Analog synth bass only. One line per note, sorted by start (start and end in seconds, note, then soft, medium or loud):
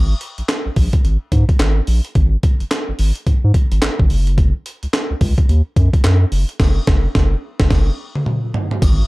0.00 0.14 G#1 loud
0.38 0.43 A#1 medium
0.66 0.70 A#1 soft
0.77 0.89 A#1 medium
1.04 1.17 G#1 loud
1.32 1.45 G#2 medium
1.60 1.81 G#1 medium
1.88 2.01 A#1 medium
2.16 2.36 G#1 loud
2.60 2.65 G#1 soft
2.89 2.93 G#1 medium
2.99 3.12 G#1 loud
3.27 3.33 G#2 soft
3.44 3.52 G#2 medium
3.72 3.80 G#1 medium
3.83 3.90 G#1 soft
4.00 4.08 G#1 medium
4.11 4.52 F#1 loud
4.83 4.87 C#2 soft
5.11 5.15 C#2 medium
5.21 5.34 C#2 medium
5.49 5.62 D#2 loud
5.77 5.89 F#2 loud
6.05 6.25 F#2 loud
6.32 6.45 F#1 medium
6.60 6.80 F#1 loud
6.88 7.08 F#1 loud
7.15 7.35 F#1 loud
7.60 7.69 F#1 medium
7.71 7.91 F#1 loud
8.82 9.03 G#1 loud